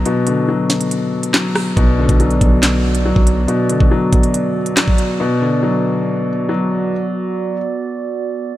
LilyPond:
<<
  \new Staff \with { instrumentName = "Glass harmonica" } { \time 4/4 \key b \minor \tempo 4 = 140 r1 | <b fis' d''>1~ | <b fis' d''>1~ | <b fis' d''>1~ |
<b fis' d''>1 | }
  \new Staff \with { instrumentName = "Grand piano" } { \clef bass \time 4/4 \key b \minor <b, fis>8 d8 fis2 fis4 | b,8 d8 fis2 fis4 | b,8 d8 fis2 fis4 | b,8 d8 fis2 fis4~ |
fis4. r2 r8 | }
  \new Staff \with { instrumentName = "808-style bass" } { \clef bass \time 4/4 \key b \minor r1 | b,,8. b,,8. b,,4.~ b,,16 b,,8. | r1 | r1 |
r1 | }
  \new DrumStaff \with { instrumentName = "Drums" } \drummode { \time 4/4 hh8 hh8 r8 <hh sn>16 hh16 hh8. hh16 <hc sn>8 <hho ss>8 | <hh bd>8. <hh bd>16 hh16 hh16 <hh bd>8 <hc hh sn>8. hh16 r16 bd16 hh8 | hh8 hh16 bd16 r8 <hh bd>16 hh16 hh8. hh16 <hc sn>16 bd16 hh8 | r4 r4 r4 r4 |
r4 r4 r4 r4 | }
>>